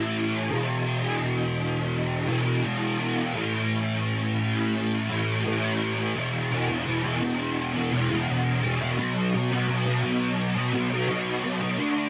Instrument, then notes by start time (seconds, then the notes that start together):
distorted electric guitar
Already playing: A2 E3 A3
0.49 E2 B2 E3
2.27 E2 B2 E3
2.62 E2 B2 E3
3.33 A2 E3 A3
5.09 A2 E3 A3
5.44 A2 E3 A3
6.15 E2 B2 E3
6.50 E2 B2 E3
6.68 B2 E3
6.85 E2 B2 E3
7.03 B2 E3
7.21 E2 B2 E3
7.74 B2 E3
7.91 E2 B2 E3
8.09 B2 E3
8.27 E2 B2 E3
8.62 E2 B2 E3
8.80 B2 E3
8.98 B2 F#3 B3
9.34 B2 F#3 B3
9.51 F#3 B3
9.68 B2 F#3 B3
9.85 F#3 B3
10.03 B2 F#3 B3
10.55 F#3 B3
10.73 B2 F#3 B3
10.90 F#3 B3
11.07 B2 F#3 B3
11.44 B2 F#3 B3
11.61 F#3 B3
11.78 D3 A3 D4